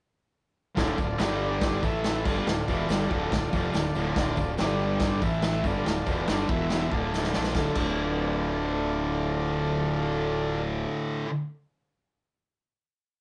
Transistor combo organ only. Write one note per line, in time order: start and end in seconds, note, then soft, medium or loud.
0.75 1.18 F4 medium
0.75 1.19 A4 medium
0.75 1.20 D5 medium
1.22 1.84 D4 medium
1.22 1.84 G4 medium
1.22 1.85 D5 medium
1.83 2.25 E4 medium
1.83 2.25 A4 medium
1.83 2.26 E5 medium
2.24 4.54 F4 medium
2.24 4.55 A4 medium
2.24 4.55 D5 medium
4.61 5.23 D4 medium
4.61 5.23 G4 medium
4.61 5.24 D5 medium
5.23 5.65 E4 medium
5.23 5.64 A4 medium
5.23 5.66 E5 medium
5.64 6.47 F4 medium
5.64 6.48 A4 medium
5.64 6.49 D5 medium
6.49 6.91 E4 medium
6.49 6.92 B4 medium
6.49 6.92 E5 medium
6.91 7.53 F4 medium
6.91 7.53 A4 medium
6.91 7.53 D5 medium
7.54 10.63 F4 medium
7.54 10.63 A4 medium
7.54 10.62 D5 medium